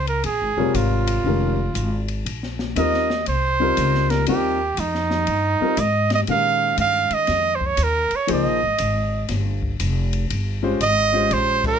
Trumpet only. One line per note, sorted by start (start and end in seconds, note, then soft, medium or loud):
0.08 0.24 A#4 medium
0.25 0.77 G#4 medium
0.76 2.09 F4 medium
2.78 3.24 D#5 medium
3.28 4.12 C5 medium
4.10 4.27 A#4 medium
4.28 4.81 G4 medium
4.80 5.81 D#4 medium
5.80 6.12 D#5 medium
6.14 6.21 D#5 medium
6.30 6.76 F5 loud
6.80 7.15 F5 medium
7.14 7.57 D#5 loud
7.55 7.68 C5 medium
7.66 7.85 C#5 loud
7.83 8.17 A#4 medium
8.16 8.31 C#5 medium
8.33 9.28 D#5 medium
10.82 11.35 D#5 loud
11.33 11.65 C5 loud
11.67 11.79 A#4 loud